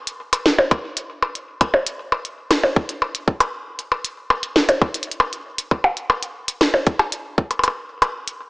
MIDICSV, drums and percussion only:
0, 0, Header, 1, 3, 480
1, 0, Start_track
1, 0, Tempo, 512821
1, 1387, Time_signature, 4, 2, 24, 8
1, 7954, End_track
2, 0, Start_track
2, 0, Title_t, "Percussion blips"
2, 307, Note_on_c, 9, 76, 54
2, 401, Note_off_c, 9, 76, 0
2, 547, Note_on_c, 9, 56, 91
2, 641, Note_off_c, 9, 56, 0
2, 667, Note_on_c, 9, 76, 86
2, 760, Note_off_c, 9, 76, 0
2, 1147, Note_on_c, 9, 76, 56
2, 1240, Note_off_c, 9, 76, 0
2, 1506, Note_on_c, 9, 76, 85
2, 1600, Note_off_c, 9, 76, 0
2, 1626, Note_on_c, 9, 56, 79
2, 1720, Note_off_c, 9, 56, 0
2, 1986, Note_on_c, 9, 76, 56
2, 2080, Note_off_c, 9, 76, 0
2, 2346, Note_on_c, 9, 76, 77
2, 2439, Note_off_c, 9, 76, 0
2, 2466, Note_on_c, 9, 56, 82
2, 2560, Note_off_c, 9, 56, 0
2, 2826, Note_on_c, 9, 76, 53
2, 2920, Note_off_c, 9, 76, 0
2, 3186, Note_on_c, 9, 76, 82
2, 3280, Note_off_c, 9, 76, 0
2, 3666, Note_on_c, 9, 76, 52
2, 3760, Note_off_c, 9, 76, 0
2, 4027, Note_on_c, 9, 76, 78
2, 4121, Note_off_c, 9, 76, 0
2, 4387, Note_on_c, 9, 56, 83
2, 4481, Note_off_c, 9, 56, 0
2, 4507, Note_on_c, 9, 76, 51
2, 4601, Note_off_c, 9, 76, 0
2, 4867, Note_on_c, 9, 76, 76
2, 4961, Note_off_c, 9, 76, 0
2, 5347, Note_on_c, 9, 76, 50
2, 5440, Note_off_c, 9, 76, 0
2, 5467, Note_on_c, 9, 56, 83
2, 5561, Note_off_c, 9, 56, 0
2, 5707, Note_on_c, 9, 76, 74
2, 5801, Note_off_c, 9, 76, 0
2, 6186, Note_on_c, 9, 76, 53
2, 6280, Note_off_c, 9, 76, 0
2, 6307, Note_on_c, 9, 56, 85
2, 6400, Note_off_c, 9, 56, 0
2, 6546, Note_on_c, 9, 76, 78
2, 6640, Note_off_c, 9, 76, 0
2, 7027, Note_on_c, 9, 76, 23
2, 7106, Note_off_c, 9, 76, 0
2, 7106, Note_on_c, 9, 76, 32
2, 7147, Note_off_c, 9, 76, 0
2, 7147, Note_on_c, 9, 76, 49
2, 7186, Note_off_c, 9, 76, 0
2, 7186, Note_on_c, 9, 76, 39
2, 7280, Note_off_c, 9, 76, 0
2, 7506, Note_on_c, 9, 76, 79
2, 7600, Note_off_c, 9, 76, 0
2, 7954, End_track
3, 0, Start_track
3, 0, Title_t, "Drums"
3, 67, Note_on_c, 9, 42, 87
3, 161, Note_off_c, 9, 42, 0
3, 307, Note_on_c, 9, 42, 93
3, 401, Note_off_c, 9, 42, 0
3, 427, Note_on_c, 9, 38, 122
3, 521, Note_off_c, 9, 38, 0
3, 667, Note_on_c, 9, 36, 112
3, 667, Note_on_c, 9, 42, 55
3, 760, Note_off_c, 9, 42, 0
3, 761, Note_off_c, 9, 36, 0
3, 906, Note_on_c, 9, 42, 95
3, 1000, Note_off_c, 9, 42, 0
3, 1266, Note_on_c, 9, 42, 56
3, 1360, Note_off_c, 9, 42, 0
3, 1506, Note_on_c, 9, 42, 81
3, 1507, Note_on_c, 9, 36, 86
3, 1600, Note_off_c, 9, 36, 0
3, 1600, Note_off_c, 9, 42, 0
3, 1746, Note_on_c, 9, 42, 97
3, 1840, Note_off_c, 9, 42, 0
3, 2106, Note_on_c, 9, 42, 52
3, 2200, Note_off_c, 9, 42, 0
3, 2346, Note_on_c, 9, 38, 127
3, 2346, Note_on_c, 9, 42, 97
3, 2439, Note_off_c, 9, 38, 0
3, 2439, Note_off_c, 9, 42, 0
3, 2587, Note_on_c, 9, 36, 108
3, 2680, Note_off_c, 9, 36, 0
3, 2706, Note_on_c, 9, 42, 59
3, 2799, Note_off_c, 9, 42, 0
3, 2947, Note_on_c, 9, 42, 84
3, 3040, Note_off_c, 9, 42, 0
3, 3067, Note_on_c, 9, 36, 90
3, 3160, Note_off_c, 9, 36, 0
3, 3186, Note_on_c, 9, 42, 97
3, 3280, Note_off_c, 9, 42, 0
3, 3546, Note_on_c, 9, 42, 54
3, 3640, Note_off_c, 9, 42, 0
3, 3786, Note_on_c, 9, 42, 91
3, 3880, Note_off_c, 9, 42, 0
3, 4147, Note_on_c, 9, 42, 51
3, 4241, Note_off_c, 9, 42, 0
3, 4267, Note_on_c, 9, 38, 127
3, 4360, Note_off_c, 9, 38, 0
3, 4387, Note_on_c, 9, 42, 73
3, 4481, Note_off_c, 9, 42, 0
3, 4507, Note_on_c, 9, 36, 109
3, 4601, Note_off_c, 9, 36, 0
3, 4627, Note_on_c, 9, 42, 91
3, 4707, Note_off_c, 9, 42, 0
3, 4707, Note_on_c, 9, 42, 74
3, 4787, Note_off_c, 9, 42, 0
3, 4787, Note_on_c, 9, 42, 60
3, 4881, Note_off_c, 9, 42, 0
3, 4987, Note_on_c, 9, 42, 57
3, 5081, Note_off_c, 9, 42, 0
3, 5226, Note_on_c, 9, 42, 88
3, 5320, Note_off_c, 9, 42, 0
3, 5347, Note_on_c, 9, 36, 85
3, 5441, Note_off_c, 9, 36, 0
3, 5587, Note_on_c, 9, 42, 51
3, 5680, Note_off_c, 9, 42, 0
3, 5827, Note_on_c, 9, 42, 77
3, 5921, Note_off_c, 9, 42, 0
3, 6067, Note_on_c, 9, 42, 92
3, 6160, Note_off_c, 9, 42, 0
3, 6186, Note_on_c, 9, 38, 127
3, 6280, Note_off_c, 9, 38, 0
3, 6426, Note_on_c, 9, 42, 54
3, 6427, Note_on_c, 9, 36, 115
3, 6520, Note_off_c, 9, 42, 0
3, 6521, Note_off_c, 9, 36, 0
3, 6666, Note_on_c, 9, 42, 93
3, 6760, Note_off_c, 9, 42, 0
3, 6907, Note_on_c, 9, 36, 87
3, 7001, Note_off_c, 9, 36, 0
3, 7027, Note_on_c, 9, 42, 53
3, 7120, Note_off_c, 9, 42, 0
3, 7147, Note_on_c, 9, 42, 89
3, 7240, Note_off_c, 9, 42, 0
3, 7506, Note_on_c, 9, 42, 49
3, 7600, Note_off_c, 9, 42, 0
3, 7746, Note_on_c, 9, 42, 78
3, 7839, Note_off_c, 9, 42, 0
3, 7954, End_track
0, 0, End_of_file